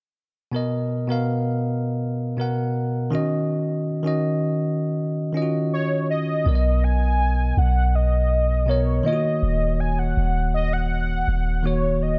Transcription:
0.52 B2 B3 A#4
0.56 D#5
1.07 B2 B3 A#4
1.12 F5
2.37 B2 B3 A#4
2.41 F#5
3.10 D#3 C#4 F#4
3.15 D#5
4.03 D#3 C#4 F#4
4.07 D#5
5.33 D#3 C#4 F4
5.37 D#5
5.42 F#4
5.73 C#5
6.11 D#5
6.44 B1 B2 B3 A#4
6.49 D5
6.55 D#5
6.84 G#5
7.57 B1 F#5
7.95 D#5
8.66 B2 B3 A#4 C#5
8.71 D#5
9.03 D#3 A#3 F4 D#5
9.08 C#5
9.13 F#4
9.43 D#1
9.80 G#5
9.99 F#5
10.17 D#1
10.54 D#5
10.73 F#5
11.28 D#1
11.63 D#3 A#3 F#4 C#5
11.67 C#5
12.02 D#5

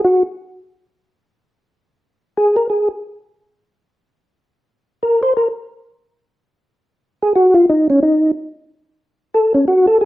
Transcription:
0.05 F#4
2.37 G#4
2.56 A#4
2.70 G#4
5.03 A#4
5.23 C5
5.37 A#4
7.23 G#4
7.36 F#4
7.54 F4
7.70 D#4
7.90 C#4
8.03 D#4
9.34 A4
9.54 C#4
9.68 F#4
9.87 A4
10.01 G#4

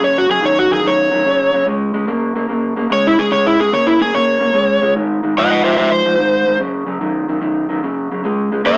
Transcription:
0.01 F#2 C#3 C#5
0.18 F#4
0.29 F#2 C#3 G#4
0.42 F#2 D#3 C#5
0.59 F#4
0.70 F#2 D#3 G#4
0.83 F#2 D#3
0.87 C#5
1.12 F#2 D#3
1.25 F#2 C#3
1.53 F#2 C#3
1.66 C#3 G#3
1.94 C#3 G#3
2.07 C#3 A#3
2.35 C#3 A#3
2.49 C#3 A#3
2.77 C#3 A#3
2.90 C#3 G#3 C#5
3.07 E4
3.18 C#3 G#3 G#4
3.31 C#3 G#3 C#5
3.47 E4
3.59 C#3 G#3 G#4
3.72 C#3 A#3 C#5
3.87 E4
4.00 C#3 A#3 G#4
4.14 C#3 A#3 C#5
4.40 C#3 A#3
4.53 C#3 G#3
4.82 C#3 G#3
4.95 G#2 D#3
5.23 G#2 D#3
5.37 G#2 F3 D#5 F#5
5.50 D#5 F#5
5.64 G#2 F3 C5 E5
5.77 G#2 F3 C5 E5
5.92 C5
6.05 G#2 F3
6.19 G#2 D#3
6.46 G#2 D#3
6.59 F#2 C#3
6.86 F#2 C#3
7.01 F#2 D#3
7.28 F#2 D#3
7.41 F#2 D#3
7.69 F#2 D#3
7.83 F#2 C#3
8.12 F#2 C#3
8.24 C#3 G#3
8.52 C#3 G#3
8.64 C#3 A#3 C#5 E5

